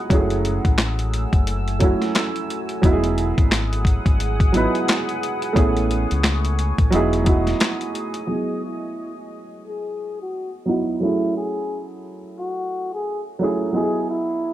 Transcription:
Already playing: F#3 B3 D#4 E4 F#4
0.10 F#1 F#3 G#3 A3 C#4 E4 G#5 E6, kick, closed hi-hat
0.15 A3 G#4
0.30 closed hi-hat
0.45 closed hi-hat
0.65 A1, kick, closed hi-hat
0.78 snare, clap, closed hi-hat
0.99 closed hi-hat
1.14 closed hi-hat
1.33 F#1, kick, closed hi-hat
1.47 closed hi-hat
1.68 closed hi-hat
1.80 F#3 A3 C#4 E4, kick, closed hi-hat
1.84 F#4
2.02 snare, closed hi-hat
2.15 snare, clap, closed hi-hat
2.36 closed hi-hat
2.50 closed hi-hat
2.69 closed hi-hat
2.82 E1 F#3 B3 D#4 E4 G#4 F#5 D#6, kick, closed hi-hat
2.86 F#4
2.93 G#4
3.04 closed hi-hat
3.18 closed hi-hat
3.38 G#1, kick, closed hi-hat
3.52 snare, clap, closed hi-hat
3.73 closed hi-hat
3.85 kick, closed hi-hat
4.06 G#1, kick, closed hi-hat
4.20 closed hi-hat
4.40 kick, closed hi-hat
4.52 F#3 B3 D#4 E4, closed hi-hat
4.57 B4
4.75 closed hi-hat
4.88 snare, clap, closed hi-hat
5.09 closed hi-hat
5.23 closed hi-hat
5.42 closed hi-hat
5.53 A1 A3 B3 C#4 E4, kick, closed hi-hat
5.58 G#4
5.77 closed hi-hat
5.91 closed hi-hat
6.11 C#2, closed hi-hat
6.24 snare, clap, closed hi-hat
6.45 closed hi-hat
6.59 closed hi-hat
6.78 A1, kick, closed hi-hat
6.90 E1 F#3 B3 D#4 E4, closed hi-hat
6.95 G#4
7.13 closed hi-hat
7.23 F#3 B3 D#4 E4, kick, closed hi-hat
7.28 F#4
7.47 snare, closed hi-hat
7.60 snare, clap, closed hi-hat
7.81 closed hi-hat
7.95 closed hi-hat
8.14 closed hi-hat
8.27 F#3 B3 E4 G#4 D#5
8.31 G#4
8.64 E4
9.67 G#4
10.22 F#4
10.66 F#3 B3 D#4 E4
10.70 F#4
11.00 F#3 A3 C#4 E4
11.05 G#4
11.37 G#4
12.39 F#4
12.94 G#4
13.39 F#3 A3 C#4 E4
13.44 G#4
13.72 F#3 B3 E4 G#4 D#5
13.77 G4
13.84 G#4
14.10 E4

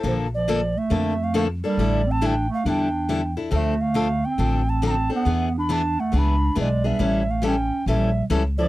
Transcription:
0.03 A#1 D3 F3 A#3 D4 A4 C5
0.34 F3 D5
0.48 D3 F3 A#3 D4 A4
0.77 A3 E5
0.90 F2 D3 F3 A#3 D4 A4
1.20 A3 F5
1.34 D3 F3 A3 A#3 D4 A4 F5
1.62 G3 A#3 D4 A4 D5
1.78 A1 D3 G3 D4 E4 A4
2.07 C4
2.11 A5
2.21 D3 G3 D4 E4 A4
2.26 G5
2.49 A3
2.54 F5
2.65 E2 D3 G3 D4 E4 A4 G5
3.09 D3 G3 D4 E4 A4
3.37 D4 E4 A4
3.51 D2 D3 F3 A3 C4 D4 A4
3.55 E5
3.81 A3 F5
3.94 D3 F3 C4 D4 A4
4.25 C4 G5
4.38 A1 D3 F3 C4 D4 A4
4.69 C4 A5
4.82 D3 F3 C4 D4 A4
4.86 C4 A#5
4.91 A5
5.10 C4 D4 A4
5.15 B3 F#5
5.25 E2 E3 B3 D4 G#4
5.58 D4 B5
5.69 E3 B3 D4 G#4 A5
5.99 A3 F#5
6.12 C#2 E3 B3 D4 G#4
6.16 D4 B5
6.55 B1 E3 G#3 B3 D4 G#4
6.60 D5
6.84 G3 B3 D4 G#4 E5
6.99 A1 E3 G3 C#4 E4 A4
7.29 A3 F5
7.42 E3 G3 C#4 E4 A4
7.47 C#4 G5
7.86 A#1 E3 G3 C#4 E4 A4 E5
7.91 G3
8.30 C#2 E3 G3 C#4 E4 A4
8.58 F3 C#4 E4 A4 D5

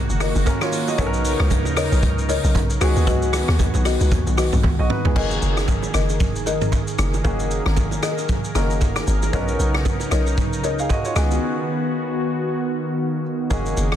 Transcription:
Already playing: D#3 A#3 C#4 D#4 F#4 A#4
0.09 F#1, shaker
0.20 G#4 A#4 D#5, cross-stick, open hi-hat, low bongo, shaker
0.35 F#1, shaker
0.46 C#4 A#4, kick, hi-hat pedal, high bongo, shaker
0.61 F4 C#5, cross-stick, shaker
0.73 open hi-hat, shaker
0.88 F#4 D#5, low bongo, shaker
0.98 B1 C#3 B3 C#4 D#4 F#4 A4 A#4 C#5 D#5, kick, hi-hat pedal, low conga, shaker
1.07 A#4
1.14 shaker
1.25 open hi-hat, shaker
1.40 C#2, cross-stick
1.50 kick, hi-hat pedal, high bongo, low conga, shaker
1.65 D#2, low bongo, shaker
1.77 A#4 C#5 D#5, cross-stick, open hi-hat, shaker
1.92 B1, shaker
2.03 C#2, kick, hi-hat pedal, low conga, shaker
2.18 shaker
2.29 A#4 C#5 D#5, open hi-hat, low bongo, shaker
2.44 B1, shaker
2.55 B1, kick, hi-hat pedal, high bongo, shaker
2.70 shaker
2.81 C#2 D#3 B3 C#4 D#4 F#4 G#4 B4 D#5, cross-stick, open hi-hat, shaker
2.96 D#2, low bongo, shaker
3.07 C#2 F#4 B4 D#5, kick, hi-hat pedal, low conga, shaker
3.22 shaker
3.33 cross-stick, open hi-hat, shaker
3.48 D#2, cross-stick
3.59 kick, hi-hat pedal, high bongo, low conga, shaker
3.74 B1, low bongo, shaker
3.85 F#4 B4 D#5, cross-stick, open hi-hat, shaker
4.01 C#2, shaker
4.12 D#2, kick, hi-hat pedal, low conga, shaker
4.27 B1, shaker
4.37 F#4 B4 D#5, cross-stick, open hi-hat, low bongo, shaker
4.53 B1, mid tom, shaker
4.63 C#2, kick, high tom, high bongo
4.79 B1 F#4 D#5
4.90 D#4 B4, mid tom
5.05 C#2 B3 G#4, floor tom, low bongo
5.15 F#1 D#3 A#3 C#4 D#4 F#4 G#4 A#4 D#5, kick, crash, low conga
5.31 shaker
5.42 F#1, shaker
5.57 cross-stick, shaker
5.68 kick, high bongo, low conga, shaker
5.82 low bongo, shaker
5.94 F#1 G#4 A#4 D#5, cross-stick, shaker
6.09 high bongo, shaker
6.20 kick, low conga, shaker
6.36 shaker
6.46 G#1 G#4 A#4 D#5, low bongo, shaker
6.61 mid tom, shaker
6.72 kick, high bongo, shaker
6.87 shaker
6.99 F#1, cross-stick, shaker
7.14 low bongo, shaker
7.24 F#1 A#3 C#4 D#4 F#4 G#4 A#4 D#5, kick, low conga, shaker
7.40 shaker
7.51 shaker
7.66 G#1, cross-stick
7.77 kick, high bongo, low conga, shaker
7.91 low bongo, shaker
8.03 G#4 A#4 D#5, cross-stick, shaker
8.18 high bongo, shaker
8.29 kick, low conga, shaker
8.44 shaker
8.55 F#1 A#3 C#4 D#4 F#4 G#4 A#4 D#5, cross-stick, low bongo, shaker
8.70 shaker
8.81 kick, high bongo, shaker
8.96 cross-stick, shaker
9.07 G#1, shaker
9.22 low bongo, shaker
9.33 B1 C#3 B3 C#4 D4 D#4 F#4 A#4 C#5 D#5, kick, low conga, shaker
9.40 D#4
9.48 shaker
9.59 B1, shaker
9.75 cross-stick
9.85 kick, high bongo, low conga, shaker
10.00 low bongo, shaker
10.11 B1 A#4 C#5 D#5, cross-stick, shaker
10.27 high bongo, shaker
10.38 kick, low conga, shaker
10.53 shaker
10.63 C#2 A#4 C#5 D#5, low bongo, shaker
10.79 G#4 F5, shaker
10.89 F#4 D#5, kick, high bongo, shaker
11.05 F4 C#5, shaker
11.15 C#2 D#3 B3 C#4 D#4 F#4 G#4, cross-stick, shaker
11.31 low bongo, shaker
13.50 F#1 A#3 C#4 D#4 F#4 G#4 A#4 D#5, kick, low conga, shaker
13.66 shaker
13.77 F#1, shaker
13.92 cross-stick

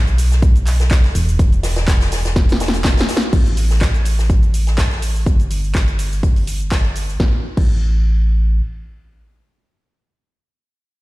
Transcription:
Already playing: B1
0.07 closed hi-hat, shaker
0.18 closed hi-hat, open hi-hat, shaker
0.32 snare, closed hi-hat, shaker
0.42 kick, closed hi-hat, shaker
0.56 closed hi-hat, shaker
0.66 clap, closed hi-hat, open hi-hat, shaker
0.80 snare, closed hi-hat, shaker
0.90 kick, snare, clap, closed hi-hat, shaker
1.04 snare, closed hi-hat
1.15 E1, closed hi-hat, open hi-hat, shaker
1.29 shaker
1.39 kick, closed hi-hat, shaker
1.52 closed hi-hat, shaker
1.63 snare, closed hi-hat, open hi-hat, shaker
1.76 snare, closed hi-hat, shaker
1.88 kick, snare, clap, closed hi-hat, shaker
2.01 snare, closed hi-hat, shaker
2.12 snare, closed hi-hat, open hi-hat, shaker
2.25 snare, closed hi-hat, shaker
2.36 kick, snare, closed hi-hat, shaker
2.49 snare, closed hi-hat, open hi-hat, shaker
2.60 snare, closed hi-hat, open hi-hat, shaker
2.68 snare
2.73 snare, closed hi-hat, shaker
2.84 kick, snare, clap, closed hi-hat, shaker
2.97 snare, closed hi-hat, shaker
3.01 snare
3.09 snare, closed hi-hat, open hi-hat, shaker
3.17 snare
3.22 closed hi-hat, shaker
3.33 A1, kick, closed hi-hat, crash, shaker
3.46 closed hi-hat, shaker
3.57 closed hi-hat, open hi-hat, shaker
3.70 snare, shaker
3.81 kick, snare, clap, closed hi-hat, shaker
3.94 closed hi-hat, shaker
4.05 closed hi-hat, open hi-hat, shaker
4.19 snare, shaker
4.30 kick, closed hi-hat, shaker
4.43 closed hi-hat, shaker
4.54 closed hi-hat, open hi-hat, shaker
4.67 snare, closed hi-hat, shaker
4.77 kick, snare, clap, closed hi-hat, shaker
4.91 snare, closed hi-hat
5.02 closed hi-hat, open hi-hat, shaker
5.16 shaker
5.26 G1, kick, closed hi-hat, shaker
5.40 closed hi-hat, shaker
5.51 closed hi-hat, open hi-hat, shaker
5.64 shaker
5.75 kick, snare, clap, closed hi-hat, shaker
5.88 closed hi-hat, shaker
5.99 closed hi-hat, open hi-hat, shaker
6.12 closed hi-hat, shaker
6.23 kick, closed hi-hat, shaker
6.36 closed hi-hat, open hi-hat, shaker
6.47 closed hi-hat, open hi-hat, shaker
6.61 closed hi-hat, shaker
6.72 kick, snare, clap, closed hi-hat, shaker
6.85 closed hi-hat
6.96 closed hi-hat, open hi-hat, shaker
7.09 closed hi-hat, shaker
7.20 A1, kick, snare
7.57 A1, kick, crash

